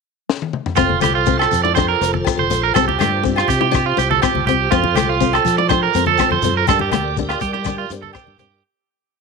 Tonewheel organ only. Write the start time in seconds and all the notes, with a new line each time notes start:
0.78 F4 A4 C5
2.74 G4
4.71 F4 A4
6.69 G4 A#4 D5